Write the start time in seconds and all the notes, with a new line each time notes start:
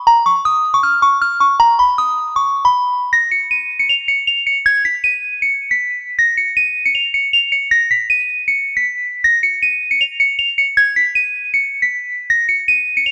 0.07 A#5
0.26 C#6
0.45 D#6
0.74 C#6
0.83 F6
1.02 C#6
1.22 F6
1.40 C#6
1.60 A#5
1.79 B5
1.98 D#6
2.36 C#6
2.65 B5
3.13 A#6
3.31 C#7
3.51 D#7
3.79 C#7
3.89 F7
4.08 C#7
4.27 F7
4.47 C#7
4.66 G#6
4.85 B6
5.04 D#7
5.42 C#7
5.71 B6
6.19 A#6
6.37 C#7
6.57 D#7
6.86 C#7
6.95 F7
7.14 C#7
7.33 F7
7.52 C#7
7.71 A#6
7.91 B6
8.10 D#7
8.48 C#7
8.77 B6
9.24 A#6
9.43 C#7
9.62 D#7
9.91 C#7
10.01 F7
10.20 C#7
10.39 F7
10.58 C#7
10.77 G#6
10.96 B6
11.15 D#7
11.54 C#7
11.82 B6
12.30 A#6
12.49 C#7
12.68 D#7
12.97 C#7
13.06 F7